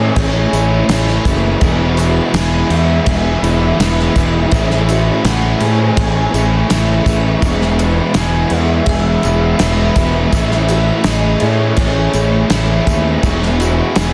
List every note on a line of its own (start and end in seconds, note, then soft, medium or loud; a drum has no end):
0.00 0.89 E3 medium
0.00 0.53 A3 medium
0.00 0.55 A3 medium
0.00 1.59 A3 medium
0.00 0.52 C#4 medium
0.00 0.54 C#4 medium
0.00 0.52 E4 medium
0.00 0.53 E4 medium
0.00 13.19 E4 medium
0.00 0.18 G#4 medium
0.00 0.17 C#5 loud
0.00 1.58 G#5 medium
0.00 1.59 C#6 medium
0.16 0.45 A1 medium
0.16 1.98 G#4 medium
0.16 1.22 C#5 medium
0.16 kick loud
0.16 crash medium
0.53 0.81 A1 medium
0.53 0.90 A3 medium
0.53 0.91 C#4 medium
0.53 0.92 E4 medium
0.53 tambourine medium
0.53 crash medium
0.89 1.18 A1 medium
0.89 1.63 E3 medium
0.89 1.28 A3 medium
0.89 1.26 C#4 medium
0.89 1.26 E4 medium
0.89 1.26 C#5 medium
0.89 snare loud
0.89 tambourine medium
0.89 crash medium
1.08 snare soft
1.25 1.54 F#1 medium
1.25 1.61 A3 medium
1.25 1.61 C#4 medium
1.25 1.64 E4 medium
1.25 1.62 B4 medium
1.25 kick medium
1.25 tambourine medium
1.25 crash medium
1.61 2.19 E1 loud
1.61 2.35 E2 loud
1.61 2.35 B2 loud
1.61 2.00 E3 loud
1.61 1.99 G#3 loud
1.61 1.98 B3 loud
1.61 1.98 E4 loud
1.61 4.49 B4 medium
1.61 14.13 G#5 medium
1.61 4.49 D#6 medium
1.61 kick loud
1.61 tambourine medium
1.61 crash medium
1.97 2.33 E3 medium
1.97 2.34 G#3 medium
1.97 2.34 B3 medium
1.97 2.35 E4 medium
1.97 2.35 F#4 medium
1.97 tambourine medium
1.97 crash medium
2.33 2.62 E1 medium
2.33 3.45 E3 medium
2.33 3.44 G#3 medium
2.33 3.42 B3 medium
2.33 3.42 E4 medium
2.33 3.08 G#4 medium
2.33 2.71 G#5 loud
2.33 snare loud
2.33 tambourine medium
2.33 crash medium
2.70 2.99 E2 loud
2.70 3.44 G#3 medium
2.70 3.43 B3 medium
2.70 3.42 E4 medium
2.70 4.48 E5 loud
2.70 crash medium
3.06 3.35 E1 medium
3.06 4.92 G#4 medium
3.06 kick loud
3.06 crash medium
3.42 3.71 E1 medium
3.42 3.79 E3 medium
3.42 3.80 G#3 medium
3.42 3.80 B3 medium
3.42 3.82 E4 medium
3.42 tambourine medium
3.42 crash medium
3.79 4.08 E1 medium
3.79 4.18 E3 medium
3.79 4.18 G#3 medium
3.79 4.16 B3 medium
3.79 4.17 E4 medium
3.79 4.16 C#5 medium
3.79 snare loud
3.79 tambourine medium
3.79 crash medium
3.99 snare soft
4.15 4.45 E1 medium
4.15 4.51 E3 medium
4.15 4.52 G#3 medium
4.15 4.51 B3 medium
4.15 4.53 E4 medium
4.15 4.52 B4 medium
4.15 kick medium
4.15 tambourine medium
4.15 crash medium
4.49 5.09 A1 loud
4.49 5.24 A2 loud
4.49 5.25 E3 loud
4.49 7.39 A3 medium
4.49 4.90 A3 loud
4.49 5.24 E5 medium
4.49 7.39 C#6 medium
4.49 kick loud
4.49 crash medium
4.53 4.89 C#4 loud
4.53 4.88 E4 loud
4.53 tambourine medium
4.70 snare soft
4.89 5.25 A3 medium
4.89 5.26 C#4 medium
4.89 5.27 E4 medium
4.89 5.25 F#4 medium
4.89 tambourine medium
4.89 crash medium
5.22 5.53 A1 loud
5.22 6.69 E3 medium
5.22 6.35 A3 medium
5.22 5.98 G#4 medium
5.22 5.60 F#5 medium
5.22 snare loud
5.22 tambourine medium
5.22 crash medium
5.27 6.34 C#4 medium
5.27 6.33 E4 medium
5.59 5.89 A2 medium
5.59 6.34 A3 medium
5.59 6.33 C#4 medium
5.59 6.33 E4 medium
5.59 5.95 G#5 loud
5.59 tambourine soft
5.59 crash medium
5.96 6.26 A1 medium
5.96 7.82 G#4 medium
5.96 7.01 G#5 medium
5.96 kick loud
5.96 crash medium
6.34 6.62 A1 medium
6.34 6.69 A3 medium
6.34 6.70 C#4 medium
6.34 6.71 E4 medium
6.34 tambourine medium
6.34 crash medium
6.69 6.99 A1 medium
6.69 7.43 E3 medium
6.69 7.07 A3 medium
6.69 7.06 C#4 medium
6.69 7.05 E4 medium
6.69 7.06 C#5 medium
6.69 snare loud
6.69 tambourine loud
6.69 crash medium
7.06 7.35 A1 medium
7.06 7.41 A3 medium
7.06 7.41 C#4 medium
7.06 7.44 E4 medium
7.06 7.43 B4 medium
7.06 kick medium
7.06 tambourine medium
7.06 crash medium
7.41 8.00 E1 loud
7.41 8.15 E2 loud
7.41 8.15 B2 loud
7.41 7.80 E3 loud
7.41 7.79 G#3 loud
7.41 7.78 B3 loud
7.41 7.78 E4 medium
7.41 10.30 B4 medium
7.41 10.30 D#6 medium
7.41 kick loud
7.41 tambourine medium
7.41 crash medium
7.61 snare soft
7.78 8.15 E3 medium
7.78 8.15 G#3 medium
7.78 8.15 B3 medium
7.78 8.17 E4 medium
7.78 8.15 F#4 medium
7.78 tambourine medium
7.78 crash medium
8.14 8.44 E1 loud
8.14 9.26 E3 medium
8.14 9.25 G#3 medium
8.14 9.23 B3 medium
8.14 9.23 E4 medium
8.14 8.88 G#4 medium
8.14 8.54 G#5 loud
8.14 snare loud
8.14 tambourine loud
8.14 crash medium
8.50 8.80 E2 loud
8.50 9.24 G#3 medium
8.50 9.23 B3 medium
8.50 9.22 E4 medium
8.50 10.32 E5 loud
8.50 crash medium
8.86 9.16 E1 medium
8.86 10.73 G#4 medium
8.86 kick loud
8.86 crash medium
9.23 9.53 E1 medium
9.23 9.59 E3 medium
9.23 9.60 G#3 medium
9.23 9.61 B3 medium
9.23 9.62 E4 medium
9.23 tambourine medium
9.23 crash medium
9.59 9.89 E1 medium
9.59 9.99 E3 medium
9.59 9.98 G#3 medium
9.59 9.97 B3 medium
9.59 9.96 E4 medium
9.59 9.96 C#5 medium
9.59 snare loud
9.59 tambourine loud
9.59 crash medium
9.96 10.25 E1 medium
9.96 10.33 E3 medium
9.96 10.34 G#3 medium
9.96 10.31 B3 medium
9.96 10.35 E4 medium
9.96 10.33 B4 medium
9.96 kick medium
9.96 tambourine medium
9.96 crash medium
10.32 10.90 A1 loud
10.32 11.06 A2 medium
10.32 11.06 E3 loud
10.32 13.20 A3 medium
10.32 10.71 A3 loud
10.32 10.69 C#4 loud
10.32 10.70 E4 loud
10.32 11.07 E5 loud
10.32 13.20 C#6 medium
10.32 kick loud
10.32 tambourine medium
10.32 crash medium
10.51 snare soft
10.68 11.06 A3 medium
10.68 11.07 C#4 medium
10.68 11.08 E4 medium
10.68 11.06 F#4 medium
10.68 tambourine medium
10.68 crash medium
11.04 11.34 A1 medium
11.04 12.51 E3 medium
11.04 12.16 A3 medium
11.04 11.78 G#4 medium
11.04 11.45 D#5 medium
11.04 snare loud
11.04 tambourine loud
11.04 crash medium
11.08 12.15 C#4 medium
11.08 12.14 E4 medium
11.40 11.71 A2 loud
11.40 12.14 A3 medium
11.40 12.13 C#4 medium
11.40 12.13 E4 medium
11.40 11.77 C#5 medium
11.40 crash medium
11.76 12.07 A1 medium
11.76 13.63 G#4 medium
11.76 12.83 C#5 medium
11.76 kick loud
11.76 crash medium
12.13 12.43 A1 loud
12.13 12.51 A3 medium
12.13 12.51 C#4 medium
12.13 12.53 E4 medium
12.13 tambourine medium
12.13 crash medium
12.50 12.79 A1 medium
12.50 13.24 E3 medium
12.50 12.88 A3 medium
12.50 12.87 C#4 medium
12.50 12.87 E4 medium
12.50 12.86 C#5 medium
12.50 snare loud
12.50 tambourine loud
12.50 crash medium
12.87 13.16 D#2 medium
12.87 13.22 A3 medium
12.87 13.22 C#4 medium
12.87 13.24 E4 medium
12.87 13.23 B4 medium
12.87 kick medium
12.87 tambourine medium
12.87 crash medium
13.23 13.80 E1 loud
13.23 14.13 E2 loud
13.23 13.96 B2 loud
13.23 13.62 E3 loud
13.23 13.61 G#3 loud
13.23 13.60 B3 loud
13.23 14.13 E4 medium
13.23 13.60 E4 loud
13.23 14.13 B4 medium
13.23 14.13 D#6 medium
13.23 kick loud
13.23 tambourine medium
13.23 crash medium
13.43 snare soft
13.60 13.96 E3 medium
13.60 13.97 G#3 medium
13.60 13.98 B3 medium
13.60 13.98 E4 medium
13.60 13.96 F#4 medium
13.60 tambourine medium
13.60 crash medium
13.95 14.13 E1 loud
13.95 14.13 E3 medium
13.95 14.13 G#3 medium
13.95 14.13 B3 medium
13.95 14.13 E4 medium
13.95 14.13 G#4 medium
13.95 14.13 G#5 loud
13.95 snare loud
13.95 tambourine loud
13.95 crash medium